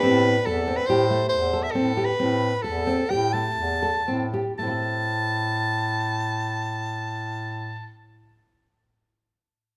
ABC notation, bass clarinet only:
X:1
M:5/4
L:1/8
Q:1/4=115
K:Am
V:1 name="Bass clarinet" clef=bass
A,,2 E,,2 A,,2 E,,2 A,,2 | A,,2 E,,2 A,,2 E,,2 A,,2 | A,,8- A,,2- | A,,8- A,,2 |]